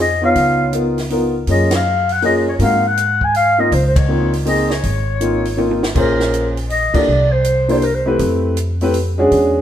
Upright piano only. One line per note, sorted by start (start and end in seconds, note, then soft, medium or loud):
0.22 0.70 B3 medium
0.22 0.70 D#4 medium
0.22 0.70 F4 medium
0.22 0.71 C#5 medium
0.73 0.95 B3 medium
0.73 0.95 D#4 soft
0.73 0.95 F4 medium
0.73 0.96 A#4 medium
1.10 1.32 B3 medium
1.10 1.32 D#4 medium
1.10 1.33 F4 medium
1.10 1.33 A#4 medium
1.49 1.70 A#3 medium
1.49 1.70 C#4 medium
1.49 1.70 F4 medium
1.49 1.71 G#4 medium
2.22 2.44 A#3 medium
2.22 2.45 C#4 medium
2.22 2.45 F4 medium
2.22 2.45 G#4 medium
2.60 2.82 A#3 medium
2.60 2.82 C4 medium
2.60 2.82 D#4 soft
2.60 2.83 F#4 medium
3.58 3.70 A#3 medium
3.58 3.71 C4 medium
3.58 3.71 D#4 medium
3.58 3.71 F4 medium
4.08 4.31 A#3 medium
4.08 4.31 C4 medium
4.08 4.31 D#4 medium
4.08 4.32 F4 medium
4.45 4.68 A#3 medium
4.45 4.68 C4 medium
4.45 4.69 D#4 medium
4.45 4.69 G#4 medium
5.21 5.43 A#3 medium
5.21 5.43 C4 medium
5.21 5.43 D#4 medium
5.21 5.44 F4 medium
5.57 5.80 A#3 medium
5.57 5.80 C4 medium
5.57 5.80 D#4 medium
5.57 5.81 F4 medium
5.95 6.52 A#3 medium
5.95 6.52 C#4 medium
5.95 6.53 F4 medium
5.95 6.53 G#4 medium
5.95 6.53 C5 medium
6.94 7.06 A#3 medium
6.94 7.06 D4 medium
6.94 7.07 E4 medium
6.94 7.07 G4 medium
6.94 7.07 A4 medium
7.68 7.81 A#3 medium
7.68 7.81 D4 medium
7.68 7.81 E4 medium
7.68 7.82 G4 medium
7.68 7.82 C5 medium
8.06 8.54 A3 medium
8.06 8.54 C4 medium
8.06 8.54 E4 medium
8.06 8.55 G4 medium
8.06 8.55 B4 medium
8.81 8.93 A3 medium
8.81 8.94 C4 medium
8.81 8.94 E4 medium
8.81 8.94 G4 medium
8.81 8.94 B4 medium
9.18 9.62 G#3 medium
9.18 9.62 C#4 medium
9.18 9.62 D4 medium
9.18 9.62 F#4 medium
9.18 9.62 G#4 medium